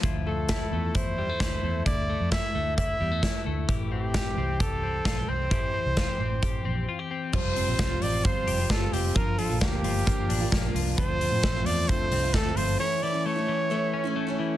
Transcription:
<<
  \new Staff \with { instrumentName = "Trumpet" } { \time 4/4 \key d \minor \tempo 4 = 132 r8 a'4. c''2 | d''4 e''4 e''4. r8 | r8 g'4. a'4. c''8~ | c''2. r4 |
c''4. d''8 c''4 a'8 g'8 | bes'8 a'8 g'2~ g'8 r8 | c''4. d''8 c''4 a'8 c''8 | cis''8 d''8 cis''2~ cis''8 r8 | }
  \new Staff \with { instrumentName = "Clean electric guitar" } { \time 4/4 \key d \minor <f e'>8 a8 e'8 a8 e'8 g16 a16 e'8 a8 | e'8 a8 e'8 a8 e'8 g16 a16 e'8 a8 | <e g'>8 c'8 g'8 c'8 g'8 c'8 f'16 g'16 c'8 | <e g'>8 c'8 f'16 g'16 c'8 g'8 c'8 f'16 g'16 c'8 |
f8 c'8 f'8 c'8 f'8 g'8 f'8 c'8 | f8 f8 bes8 f8 bes8 d'8 bes8 f8 | f8 f8 a8 f8 a8 c'8 a8 f8 | e8 e8 a8 e8 a8 cis'8 a8 e8 | }
  \new Staff \with { instrumentName = "Steel-string acoustic guitar" } { \time 4/4 \key d \minor r1 | r1 | r1 | r1 |
<f g c' f'>8. <g c' f'>8 <g c' f'>8. <f g c' f'>8. <g c' f'>8 <g c' f'>8. | <d f bes f'>8. <f bes f'>8 <f bes f'>8. <d f bes f'>8. <f bes f'>8 <f bes f'>8. | <d a c' f'>8. <a c' f'>8 <a c' f'>8. <d a c' f'>8. <a c' f'>8 <a c' f'>8. | <e a cis' e'>8. <a cis' e'>8 <a cis' e'>8. <e a cis' e'>8. <a cis' e'>8 <a cis' e'>8. | }
  \new Staff \with { instrumentName = "Fingered electric bass" } { \clef bass \time 4/4 \key d \minor d,4. e,4. d,8 e,8 | d,8. f,8 r16 d,4 e,8. r16 d,8 | a,,4. c,4. bes,,8 c,8 | a,,8. c,8 r16 a,,4 bes,,8 r4 |
f,,8. bes,,16 c,8 a,,8 g,,8 f,,8 r8 f,,8 | g,,8. bes,,16 d,8 g,,8 g,,8 a,,8 bes,,8 c,8 | d,8. a,16 a,,8 e,8 d,8 c,8 d,8 g,,8 | r1 | }
  \new DrumStaff \with { instrumentName = "Drums" } \drummode { \time 4/4 <hh bd>4 <hh bd sn>4 <hh bd>4 <hh bd sn>4 | <hh bd>4 <hh bd sn>4 <hh bd>4 <hh bd sn>4 | <hh bd>4 <hh bd sn>4 <hh bd>4 <hh bd sn>4 | <hh bd>4 <hh bd sn>4 <hh bd>4 r4 |
<cymc bd>8 hho8 <hh bd sn>8 hho8 <hh bd>8 hho8 <hh bd sn>8 hho8 | <hh bd>8 hho8 <hh bd sn>8 hho8 <hh bd>8 hho8 <hh bd sn>8 hho8 | bd8 hho8 <hh bd sn>8 hho8 <hh bd>8 hho8 <hh bd sn>8 hho8 | r4 r4 r4 r4 | }
>>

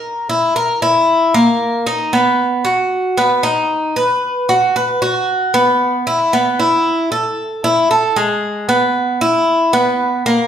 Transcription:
\new Staff \with { instrumentName = "Cuban tres" } { \time 4/4 \key e \major \tempo 4 = 114 ais'8 e'8 ais'8 e'4 ais4 dis'8 | b4 fis'4 b8 dis'4 b'8~ | b'8 fis'8 b'8 fis'4 b4 e'8 | b8 e'4 a'4 e'8 a'8 gis8~ |
gis8 b4 e'4 b4 ais8 | }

